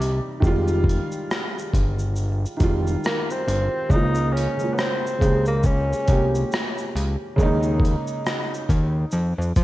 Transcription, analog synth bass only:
0.00 0.21 C2 medium
0.43 1.00 F1 medium
1.74 2.46 G1 medium
2.61 2.97 F1 loud
3.47 3.69 G1 medium
3.90 4.48 C#2 loud
5.22 5.94 C#2 medium
6.09 6.44 C2 medium
6.95 7.16 C#2 loud
7.38 7.96 D#2 loud
8.70 9.05 D#2 medium
9.13 9.34 F2 loud
9.38 9.53 F2 medium
9.57 9.64 F3 medium

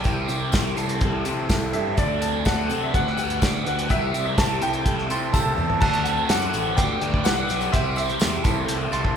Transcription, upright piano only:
0.00 0.48 G5 medium
1.73 1.89 E5 medium
1.92 1.98 E5 medium
1.98 2.42 D5 medium
2.46 2.83 F#5 medium
2.83 2.95 E5 medium
2.95 3.66 F#5 medium
3.67 3.91 F#5 medium
3.91 4.23 E5 loud
4.25 4.38 E5 medium
4.38 4.63 A5 loud
4.62 5.54 G5 loud
5.11 5.33 C6 loud
5.33 5.79 A5 loud
5.81 6.30 A5 loud
6.30 6.79 F#5 medium
6.77 7.21 G5 medium
7.24 7.74 F#5 medium
7.72 7.95 E5 medium
7.97 8.41 E5 medium
8.93 9.17 C6 loud

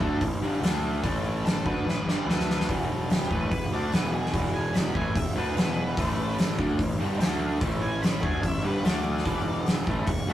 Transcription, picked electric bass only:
0.01 0.20 D2 medium
0.22 0.41 A1 medium
0.41 0.60 G1 medium
0.60 1.00 D2 loud
1.04 1.62 A1 medium
1.65 1.84 D2 medium
1.84 2.03 A1 medium
2.04 2.24 G1 loud
2.26 2.65 D2 medium
2.69 3.26 E1 loud
3.30 3.49 A1 medium
3.51 3.70 E1 medium
3.71 3.90 D2 medium
3.93 4.31 E1 medium
4.33 4.91 E1 medium
4.95 5.14 A1 medium
5.15 5.34 E1 medium
5.35 5.54 D2 medium
5.55 5.94 E1 medium
5.98 6.55 A1 medium
6.58 6.78 D2 medium
6.79 6.97 A1 medium
6.98 7.18 G1 medium
7.19 7.58 D2 medium
7.61 8.19 A1 medium
8.23 8.42 D2 medium
8.43 8.63 A1 medium
8.63 8.83 G1 loud
8.84 9.22 D2 medium
9.25 9.83 E1 medium
9.88 10.06 A1 medium
10.07 10.26 E1 medium
10.27 10.33 D2 loud

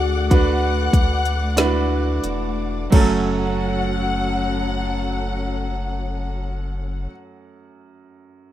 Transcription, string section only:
0.00 2.88 A3 medium
0.00 2.89 D5 medium
0.00 2.88 F#5 medium
0.00 2.89 D6 medium
2.92 7.07 F#3 medium
2.92 7.08 C#4 medium
2.92 7.08 A4 medium
2.92 7.08 F#5 medium

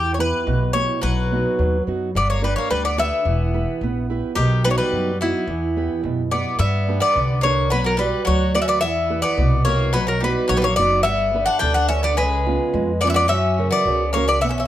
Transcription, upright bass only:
0.00 0.31 E2 loud
0.47 0.86 B1 medium
1.03 1.42 B1 medium
1.59 1.84 D#2 medium
1.87 2.12 F#2 medium
2.15 2.54 G1 medium
2.70 3.09 D2 medium
3.25 3.64 E1 medium
3.81 4.20 A#1 medium
4.36 4.75 B1 loud
4.92 5.31 F#2 medium
5.47 5.87 E2 loud
6.04 6.43 F#2 medium
6.59 6.98 G2 loud
7.16 7.70 C2 medium
7.70 8.10 B1 loud
8.27 8.82 D2 medium
8.82 9.21 E2 loud
9.37 9.94 C2 medium
9.94 10.33 B1 loud
10.49 10.75 A#1 medium
10.77 11.06 F#1 medium
11.06 11.45 G1 loud
11.62 12.18 D2 medium
12.18 12.57 C#2 loud
12.74 13.30 F2 medium
13.30 13.68 F#2 loud
13.85 14.41 C#2 medium
14.41 14.67 B1 loud

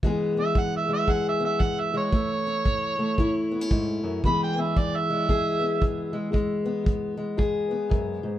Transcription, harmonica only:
0.40 0.61 E5 medium
0.59 0.75 F#5 medium
0.76 0.92 E5 medium
0.93 1.12 E5 medium
1.11 1.27 F#5 medium
1.28 1.44 E5 medium
1.45 1.63 E5 medium
1.62 1.81 F#5 medium
1.80 1.97 E5 medium
1.97 3.51 C#5 loud
4.26 4.42 B5 loud
4.43 4.62 G5 medium
4.61 4.80 E5 medium
4.78 4.97 D5 medium
4.96 5.97 E5 loud

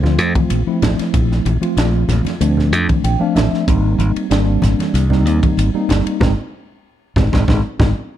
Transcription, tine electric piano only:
0.03 0.61 F3 medium
0.03 0.61 A3 medium
0.03 0.61 C4 medium
0.03 0.61 F4 medium
0.67 1.53 F3 medium
0.67 1.54 A3 medium
0.67 1.54 C4 medium
0.67 1.54 E4 medium
1.61 2.33 F3 medium
1.61 2.34 A3 medium
1.61 2.34 C4 medium
1.61 2.34 F4 medium
2.40 3.13 F3 medium
2.40 3.14 A3 medium
2.40 3.14 C4 medium
2.40 3.14 D4 medium
3.04 3.20 G5 medium
3.19 3.63 F3 medium
3.19 3.63 A3 medium
3.19 3.64 C4 medium
3.19 3.64 D4 loud
3.19 3.35 F5 medium
3.35 3.65 E5 medium
3.67 4.26 G3 medium
3.67 4.26 A#3 medium
3.67 4.26 C4 medium
3.67 4.26 D#4 medium
4.30 5.03 G3 medium
4.30 5.03 A#3 medium
4.30 5.04 C4 medium
4.30 5.04 D4 loud
5.10 5.68 G3 medium
5.10 5.68 A#3 medium
5.10 5.69 C4 medium
5.10 5.69 D#4 loud
5.74 6.21 G3 medium
5.74 6.21 A#3 medium
5.74 6.19 C4 medium
5.74 6.20 D#4 medium
6.20 6.32 G#3 loud
6.20 6.31 C4 medium
6.20 6.32 D#4 loud
7.16 7.27 G#3 medium
7.16 7.27 C4 medium
7.16 7.27 D#4 medium
7.32 7.42 G#3 medium
7.32 7.42 C4 medium
7.32 7.42 D#4 medium
7.48 7.59 G#3 medium
7.48 7.59 C4 medium
7.48 7.59 D#4 medium
7.79 7.90 G#3 medium
7.79 7.90 C4 medium
7.79 7.91 D#4 medium

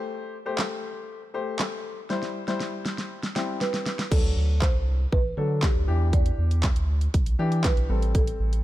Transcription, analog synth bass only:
4.12 4.33 D2 loud
4.37 4.69 D2 medium
4.75 5.06 C2 medium
5.13 5.34 A1 loud
5.37 5.69 D3 medium
5.75 5.86 D2 medium
5.88 6.31 E2 loud
6.38 6.70 E2 medium
6.76 7.08 D2 medium
7.14 7.35 B1 loud
7.39 7.71 E3 medium
7.77 7.88 B1 medium
7.90 8.32 A1 loud
8.40 8.63 A1 medium

